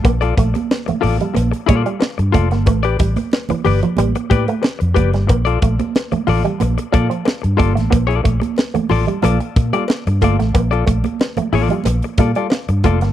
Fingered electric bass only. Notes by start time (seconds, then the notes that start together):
0.05 A#1
0.38 A#1
0.88 muted fingered electric bass stroke
1.04 A1
1.37 A#1
1.69 A#2
2.19 G2
2.34 F1
2.52 G1
2.67 A1
3.00 A1
3.51 muted fingered electric bass stroke
3.66 G1
3.98 A1
4.31 A2
4.82 F2
4.97 F#1
5.15 G1
5.30 A#1
5.63 A#1
6.13 muted fingered electric bass stroke
6.28 A1
6.61 A#1
6.94 A#2
7.44 G2
7.60 G1
7.77 A1
7.93 A#1
8.26 A#1
8.76 muted fingered electric bass stroke
8.91 A1
9.23 A#1
9.56 A#2
10.07 G2
10.22 G1
10.40 A1
10.55 A#1
10.88 A#1
11.38 muted fingered electric bass stroke
11.53 A1
11.86 A#1
12.18 A#2
12.69 G2
12.84 F1
13.02 G1